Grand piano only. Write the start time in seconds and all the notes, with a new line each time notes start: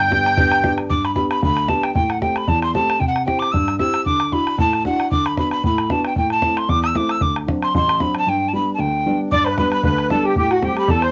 Already playing: G1 G2
0.10 B3 D4 G4
0.37 B3 D4 G4
0.63 B3 D4 G4
0.91 G2
1.15 B3 D4 G4
1.42 D2
1.68 B3 D4 G4
1.95 A2
2.21 A3 C4 G4
2.48 E2
2.74 A3 C4 G4
3.00 C3
3.26 C4 E4 G4
3.53 G2
3.80 C4 E4 G4
4.06 D3
4.32 D4 E4 F#4
4.58 A2
4.85 D4 E4 F#4
5.12 D3
5.38 B3 D4 F#4
5.64 A2
5.90 B3 D4 F#4
6.16 A2
6.42 A3 C4 E4
6.68 E2
6.94 A3 C4 E4
7.22 D2
7.47 F#3 C4 D4
7.75 A1
8.00 F#3 C4 D4
8.27 G2
8.53 G3 B3 D4
8.79 D2
9.06 G3 B3 D4
9.33 G2
9.59 G3 B3 D4
9.85 D2
10.10 G3 B3 D4
10.37 A2
10.63 G3 A3 C4
10.88 E2